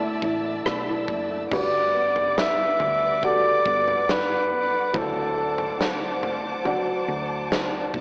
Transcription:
Already playing: fingered electric bass D2, nylon-string guitar D3 A3 E4, upright piano D3 A3 E4 D5, string section D5 E5 A5 E6, flugelhorn E5
0.01 nylon-string guitar D4
0.22 fingered electric bass A1, nylon-string guitar E4, kick
0.44 nylon-string guitar D4
0.65 fingered electric bass B1, nylon-string guitar A3, cross-stick
0.87 nylon-string guitar E4
1.08 fingered electric bass F#1, nylon-string guitar D4, kick
1.30 nylon-string guitar A3
1.51 fingered electric bass G1, upright piano G2 D3 G3 F#4 B4, nylon-string guitar G3, string section B4 D5 F#5 D6, flugelhorn D5, kick, floor tom, crash
1.94 nylon-string guitar B3
2.16 floor tom
2.37 nylon-string guitar D4, flugelhorn E5, snare
2.80 fingered electric bass D2, nylon-string guitar B3, floor tom
3.23 upright piano G3 F#4 A4, nylon-string guitar F#4, flugelhorn D5, kick, floor tom
3.66 fingered electric bass G1, nylon-string guitar B3, kick
3.88 floor tom
4.08 nylon-string guitar D4, flugelhorn B4, snare
4.51 nylon-string guitar B3
4.93 fingered electric bass D2, upright piano A2 F#3 D4 C5, nylon-string guitar D3, string section C5 A5 D6, kick, floor tom
4.98 flugelhorn A4
5.37 nylon-string guitar A3
5.58 floor tom
5.80 nylon-string guitar C4, snare
6.22 fingered electric bass A1, nylon-string guitar A3, floor tom
6.65 upright piano F#3 D4 D5, nylon-string guitar F#4, floor tom
7.08 fingered electric bass D2, nylon-string guitar A3
7.51 nylon-string guitar C4, snare
7.94 fingered electric bass B1, nylon-string guitar A3, kick, floor tom

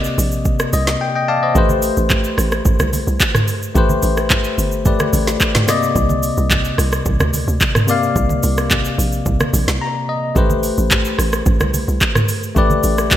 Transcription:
Already playing: tine electric piano C3 A#3 D5 D#5
0.04 shaker
0.18 log drum bass A#1, open hi-hat, shaker
0.32 shaker
0.45 kick, shaker
0.59 cross-stick, shaker
0.73 log drum bass C2, tine electric piano D#5, open hi-hat, shaker
0.87 snare, shaker
1.01 tine electric piano G5
1.15 tine electric piano D#5 G5
1.28 tine electric piano D5 F5 A5
1.43 tine electric piano C5 D#5
1.54 log drum bass A1, tine electric piano A3 G4 B4 C5, kick, low conga, shaker
1.69 high conga, shaker
1.82 open hi-hat, shaker
1.97 log drum bass A1, shaker
2.10 kick, clap, low conga, shaker
2.24 shaker
2.38 log drum bass A1, cross-stick, open hi-hat, shaker
2.52 cross-stick, shaker
2.65 log drum bass A1, kick, low conga, shaker
2.79 log drum bass C2, cross-stick, high conga, shaker
2.93 open hi-hat, high conga, shaker
3.07 log drum bass C2, shaker
3.20 kick, clap, shaker
3.35 cross-stick, mid tom, high conga, shaker
3.48 open hi-hat, shaker
3.63 shaker
3.74 log drum bass A1, tine electric piano A3 G4 B4 C5, kick, low conga, shaker
3.89 high conga, shaker
4.03 log drum bass A1, open hi-hat, shaker
4.17 cross-stick, shaker
4.30 kick, clap, low conga, shaker
4.44 shaker
4.58 log drum bass G1, open hi-hat, shaker
4.72 shaker
4.85 tine electric piano A3 G4 B4 D5, kick, low conga, shaker
5.00 cross-stick, high conga, shaker
5.13 log drum bass A1, open hi-hat, high conga, shaker
5.27 snare, shaker
5.40 kick, clap, shaker
5.55 snare, mid tom, high conga, shaker
5.67 tine electric piano C3 A#3 D5 D#5, cross-stick, snare, open hi-hat, shaker
5.83 shaker
5.95 log drum bass C2, kick, low conga, shaker
6.09 high conga, shaker
6.23 open hi-hat, shaker
6.38 log drum bass C2, shaker
6.50 kick, clap, low conga, shaker
6.65 shaker
6.78 log drum bass C2, cross-stick, open hi-hat, shaker
6.92 cross-stick, shaker
7.06 log drum bass C2, kick, low conga, shaker
7.20 log drum bass D2, cross-stick, high conga, shaker
7.33 open hi-hat, high conga, shaker
7.48 log drum bass D2, shaker
7.60 kick, clap, shaker
7.75 cross-stick, mid tom, high conga, shaker
7.87 tine electric piano C3 A#3 D5 F5, open hi-hat, shaker
8.03 shaker
8.16 log drum bass C2, kick, low conga, shaker
8.29 high conga, shaker
8.43 log drum bass C2, open hi-hat, shaker
8.58 cross-stick, shaker
8.71 kick, clap, low conga, shaker
8.85 shaker
8.98 log drum bass A#1, open hi-hat, shaker
9.12 shaker
9.26 log drum bass C2, kick, low conga, shaker
9.40 cross-stick, high conga, shaker
9.53 log drum bass A#1, open hi-hat, high conga, shaker
9.68 log drum bass C2, snare, shaker
9.81 tine electric piano A#5
10.09 tine electric piano D#5
10.35 log drum bass A1, tine electric piano A3 G4 B4 C5, kick, low conga, shaker
10.50 high conga, shaker
10.63 open hi-hat, shaker
10.78 log drum bass A1, shaker
10.91 kick, clap, low conga, shaker
11.05 shaker
11.19 log drum bass A1, cross-stick, open hi-hat, shaker
11.33 cross-stick, shaker
11.46 log drum bass A1, kick, low conga, shaker
11.60 log drum bass C2, cross-stick, high conga, shaker
11.74 open hi-hat, high conga, shaker
11.88 log drum bass C2, shaker
12.01 kick, clap, shaker
12.15 cross-stick, mid tom, high conga, shaker
12.28 open hi-hat, shaker
12.43 shaker
12.55 log drum bass A1, tine electric piano A3 G4 B4 D5, kick, low conga, shaker
12.70 high conga, shaker
12.83 log drum bass A1, open hi-hat, shaker
12.98 cross-stick, shaker
13.11 kick, clap, low conga, shaker

